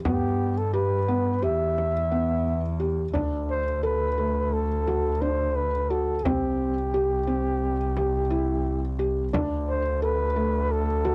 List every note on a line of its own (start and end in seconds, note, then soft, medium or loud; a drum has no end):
0.05 1.45 G2 medium
0.05 0.54 B3 medium
0.05 0.60 G4 medium
0.05 frame drum medium
0.58 0.73 A4 medium
0.73 0.98 G4 medium
0.73 1.45 B4 medium
0.73 frame drum soft
1.08 1.33 B3 medium
1.42 3.12 E2 medium
1.42 1.91 G4 medium
1.42 2.81 E5 medium
1.78 frame drum soft
2.12 2.60 B3 medium
2.46 frame drum soft
2.80 3.04 G4 medium
3.13 6.26 D2 medium
3.13 3.62 D4 medium
3.13 frame drum medium
3.51 3.82 C5 medium
3.83 4.07 A4 medium
3.83 4.55 B4 medium
4.18 4.66 A3 medium
4.53 5.23 A4 medium
4.87 5.11 F#4 medium
4.87 frame drum soft
5.22 5.70 D4 medium
5.22 5.57 C5 medium
5.56 5.92 B4 medium
5.90 6.14 F#4 medium
5.90 6.26 A4 medium
6.24 9.35 C2 medium
6.24 6.73 C4 medium
6.24 8.99 G4 medium
6.24 frame drum medium
6.94 7.18 G4 medium
7.27 7.76 C4 medium
7.97 8.21 G4 medium
7.97 frame drum soft
8.30 8.79 E4 medium
8.99 9.23 G4 medium
9.33 11.15 D2 medium
9.33 9.82 D4 medium
9.33 frame drum medium
9.69 10.01 C5 medium
10.02 10.26 A4 medium
10.02 10.73 B4 medium
10.36 10.84 A3 medium
10.72 11.15 A4 medium
11.05 11.15 F#4 medium
11.05 frame drum soft